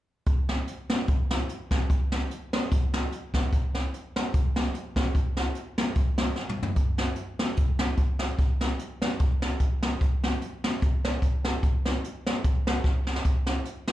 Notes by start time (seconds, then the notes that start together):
0.26 kick, closed hi-hat
0.49 snare, closed hi-hat
0.68 closed hi-hat
0.89 snare, closed hi-hat
1.08 kick, closed hi-hat
1.30 snare, closed hi-hat
1.49 closed hi-hat
1.71 kick, snare, closed hi-hat
1.90 kick, closed hi-hat
2.12 snare, closed hi-hat
2.31 closed hi-hat
2.53 snare, closed hi-hat
2.71 kick, closed hi-hat
2.93 snare, closed hi-hat
3.12 closed hi-hat
3.34 kick, snare, closed hi-hat
3.53 kick, closed hi-hat
3.75 snare, closed hi-hat
3.94 closed hi-hat
4.16 snare, closed hi-hat
4.34 kick, closed hi-hat
4.56 snare, closed hi-hat
4.74 closed hi-hat
4.96 kick, snare, closed hi-hat
5.15 kick, closed hi-hat
5.37 snare, closed hi-hat
5.55 closed hi-hat
5.78 snare, closed hi-hat
5.95 kick, closed hi-hat
6.18 snare, closed hi-hat
6.36 snare
6.49 mid tom
6.63 floor tom
6.76 kick, closed hi-hat
6.98 snare, closed hi-hat
7.16 closed hi-hat
7.39 snare, closed hi-hat
7.57 kick, closed hi-hat
7.79 snare, closed hi-hat
7.97 kick, closed hi-hat
8.19 snare, closed hi-hat
8.38 kick, closed hi-hat
8.61 snare, closed hi-hat
8.79 closed hi-hat
9.01 snare, closed hi-hat
9.19 kick, closed hi-hat
9.42 snare, closed hi-hat
9.60 kick, closed hi-hat
9.83 snare, closed hi-hat
10.01 kick, closed hi-hat
10.24 snare, closed hi-hat
10.41 closed hi-hat
10.64 snare, closed hi-hat
10.82 kick, closed hi-hat
11.04 snare, closed hi-hat
11.22 kick, closed hi-hat
11.45 snare, closed hi-hat
11.63 kick, closed hi-hat
11.85 snare, closed hi-hat
12.04 closed hi-hat
12.26 snare, closed hi-hat
12.44 kick, closed hi-hat
12.67 snare, closed hi-hat
12.84 kick, snare
13.07 snare
13.16 snare
13.25 kick, closed hi-hat
13.47 snare, closed hi-hat
13.65 closed hi-hat
13.87 snare, closed hi-hat